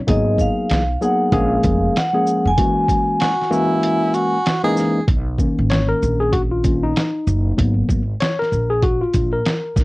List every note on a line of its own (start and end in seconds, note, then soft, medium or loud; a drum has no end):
0.07 0.46 G#1 loud
0.07 0.82 F#3 medium
0.07 0.81 A#3 medium
0.07 0.82 B3 medium
0.07 0.82 D#4 medium
0.07 0.82 G#4 medium
0.07 0.41 D#5 medium
0.07 kick loud
0.07 closed hi-hat medium
0.38 0.99 F5 medium
0.38 kick medium
0.38 shaker soft
0.70 0.94 B1 medium
0.70 snare loud
0.70 closed hi-hat medium
1.01 1.33 F#3 medium
1.01 1.31 A#3 medium
1.01 1.33 B3 medium
1.01 1.33 D#4 medium
1.01 1.32 G#4 medium
1.01 1.35 F#5 medium
1.01 shaker soft
1.32 1.56 A#1 loud
1.32 1.95 F3 medium
1.32 1.95 G#3 medium
1.32 1.95 A#3 medium
1.32 1.95 C#4 medium
1.32 1.96 G#4 medium
1.32 1.98 F5 medium
1.32 kick medium
1.32 closed hi-hat medium
1.63 1.88 F1 loud
1.63 kick medium
1.63 closed hi-hat medium
1.63 shaker soft
1.96 2.48 F#5 loud
1.96 snare loud
1.96 closed hi-hat medium
2.13 2.49 F3 medium
2.13 2.49 G#3 medium
2.13 2.49 A#3 medium
2.13 2.49 C#4 medium
2.13 2.49 G#4 medium
2.27 shaker medium
2.45 2.55 F1 medium
2.45 4.42 G#5 medium
2.57 3.31 E3 medium
2.57 3.32 G#3 medium
2.57 3.32 A#3 medium
2.57 3.32 C#4 medium
2.57 3.32 F#4 medium
2.57 kick loud
2.57 closed hi-hat medium
2.88 kick medium
2.88 closed hi-hat soft
2.88 shaker soft
3.20 3.53 F#4 medium
3.20 snare loud
3.20 closed hi-hat medium
3.41 snare soft
3.50 4.37 E3 medium
3.50 4.37 G#3 medium
3.50 4.37 A#3 medium
3.50 4.37 C#4 medium
3.50 4.16 E4 medium
3.50 4.37 F#4 medium
3.50 shaker soft
3.83 closed hi-hat medium
4.14 4.64 F#4 loud
4.14 closed hi-hat soft
4.14 shaker medium
4.46 snare loud
4.46 closed hi-hat medium
4.63 4.99 E3 medium
4.63 4.99 G#3 medium
4.63 4.99 A#3 medium
4.63 4.99 C#4 medium
4.63 4.99 D#4 loud
4.63 5.05 G#4 loud
4.77 snare soft
4.77 shaker medium
5.08 5.46 B1 loud
5.08 kick loud
5.08 closed hi-hat medium
5.38 6.62 D#3 medium
5.38 6.63 A#3 soft
5.38 6.63 C#4 medium
5.38 kick medium
5.38 shaker soft
5.58 5.92 G#1 medium
5.70 5.88 C#5 loud
5.70 snare loud
5.70 closed hi-hat medium
5.89 6.21 A#4 medium
6.03 6.92 A#1 medium
6.03 shaker soft
6.20 6.33 G#4 medium
6.32 6.41 F#4 medium
6.32 kick medium
6.32 closed hi-hat medium
6.51 6.84 F4 medium
6.64 6.92 D#3 soft
6.64 6.92 A#3 soft
6.64 6.93 C#4 medium
6.64 kick medium
6.64 closed hi-hat soft
6.64 shaker soft
6.83 7.73 D#4 medium
6.96 snare loud
6.96 closed hi-hat medium
7.27 7.51 F#1 loud
7.27 shaker medium
7.57 7.82 G#1 loud
7.57 8.01 F#3 medium
7.57 8.02 A#3 soft
7.57 8.02 B3 medium
7.57 kick loud
7.57 closed hi-hat medium
7.89 8.13 G#1 medium
7.89 kick medium
7.89 shaker soft
8.20 8.38 C#5 loud
8.20 snare loud
8.20 closed hi-hat medium
8.39 8.71 A#4 medium
8.39 snare soft
8.52 8.99 A#1 medium
8.52 shaker soft
8.70 8.83 G#4 medium
8.82 9.02 F#4 medium
8.82 kick medium
8.82 closed hi-hat medium
9.01 9.31 F4 medium
9.14 9.38 A#1 medium
9.14 kick medium
9.14 closed hi-hat medium
9.14 shaker soft
9.33 9.84 A#4 medium
9.45 snare loud
9.45 closed hi-hat medium
9.76 9.84 B1 medium
9.76 kick medium
9.76 snare soft
9.76 shaker medium